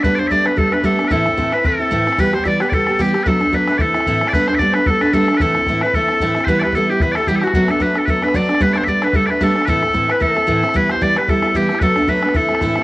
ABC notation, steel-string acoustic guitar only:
X:1
M:4/4
L:1/8
Q:"Swing" 1/4=224
K:Ador
V:1 name="Steel-string acoustic guitar"
[G,A,B,D] [A,B,D] [G,A,B,D] [A,B,D] [G,A,B,D] [A,B,D] [G,A,B,D] [A,B,D] | [A,,E,A,CE] [A,CE] [A,,E,A,CE] [A,CE] [E,A,CE] [A,CE] [A,,E,A,CE] [A,CE] | [E,G,B,G] [G,B,G] [E,G,B,G] [G,B,G] [E,G,B,G] [G,B,G] [E,G,B,G] [G,B,G] | [F,A,B,D] [A,B,D] [F,A,B,D] [A,B,D] [E,A,CE] [A,CE] [A,,E,A,CE] [A,CE] |
[G,A,B,D] [A,B,D] [G,A,B,D] [A,B,D] [G,A,B,D] [A,B,D] [G,A,B,D] [A,B,D] | [A,,E,A,CE] [A,CE] [A,,E,A,CE] [A,CE] [E,A,CE] [A,CE] [A,,E,A,CE] [A,CE] | [E,G,B,E] [G,B,E] [E,G,B,E] [G,B,E] [E,G,B,E] [G,B,E] [E,G,B,E] [G,B,E] | [F,A,B,D] [A,B,D] [F,A,B,D] [A,B,D] [F,A,B,D] [A,B,D] [F,A,B,D] [A,B,D] |
[G,A,B,D] [A,B,D] [G,A,B,D] [A,B,D] [G,A,B,D] [A,B,D] [G,A,B,D] [A,B,D] | [A,,E,A,CE] [A,CE] [A,,E,A,CE] [A,CE] [E,A,CE] [A,CE] [A,,E,A,CE] [A,CE] | [E,G,B,E] [G,B,E] [E,G,B,E] [G,B,E] [E,G,B,E] [G,B,E] [E,G,B,E] [G,B,E] | [F,A,B,D] [A,B,D] [F,A,B,D] [A,B,D] [E,A,CE] [A,CE] [A,,E,A,CE] [A,CE] |]